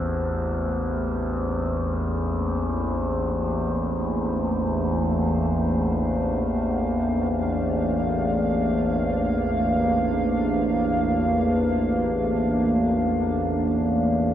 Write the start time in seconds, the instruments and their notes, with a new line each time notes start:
Already playing: synth drone A1 E2, analog synth pad A3 A#3 D4 C5 D5
4.71 analog synth pad F5